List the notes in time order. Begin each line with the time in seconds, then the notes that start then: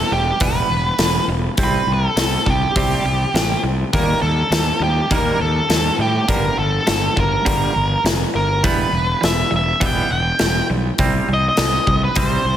Already playing: A4
0.11 E1 E3 G3 G4
0.40 E1 E3 G3 B3 B4, kick, open hi-hat
0.70 E1 E3 G3
0.98 E1 E3 G3, snare, open hi-hat
1.27 E1 E3 G3
1.57 C2 C3 G3 C4, kick, open hi-hat
1.64 B4
1.87 C2 C3 G3
1.93 A4
2.16 C2 C3 G3, snare, open hi-hat
2.46 C2 C3 G3 G4, kick
2.76 C2 C3 G3 C4, kick, open hi-hat
3.04 C2 C3 G3
3.34 A1 C3 G3, snare, open hi-hat
3.63 C2 C3 G3
3.93 D#2 D#3 G3 A#3 A#4, kick, open hi-hat
4.22 D#2 D#3 G3 A4
4.50 D#2 D#3 G3, snare, open hi-hat
4.80 D#2 D#3 G3 G4
5.10 D#2 D#3 G3 A#3, kick, open hi-hat
5.14 A#4
5.40 D#2 G3 A4
5.69 D#2 D#3 G3, snare, open hi-hat
5.98 A2 D#3 G3 G4
6.28 G1 G2 D3 G3 A#4, kick, open hi-hat
6.58 G1 G2 D3 A4
6.87 G1 G2 D3, snare, open hi-hat
7.17 G1 G2 D3 A#4, kick
7.45 G1 G2 D3 G3, kick, open hi-hat
7.75 G1 G2 D3
8.04 F1 G2 D3, snare, open hi-hat
8.34 G1 G2 D3 A#4
8.64 E1 E3 G3 B3 B4, kick, open hi-hat
8.93 E1 E3 G3
9.21 E1 E3 G3 E5, snare, open hi-hat
9.51 E1 E3 G3
9.56 E5
9.80 E1 E3 G3 B3, kick, open hi-hat
9.86 G5
10.10 E1 E3 G3 G5
10.39 E1 E3 G3, snare, open hi-hat
10.70 B1 E3 G3
10.98 C2 C3 G3 C4, kick, open hi-hat
11.28 C2 C3 G3
11.34 D#5
11.49 D#5
11.57 C2 C3 G3, snare, open hi-hat
11.87 C2 C3 G3, kick
12.04 B4
12.15 C2 C3 G3 C4 C5, kick, open hi-hat
12.44 C2 C3 G3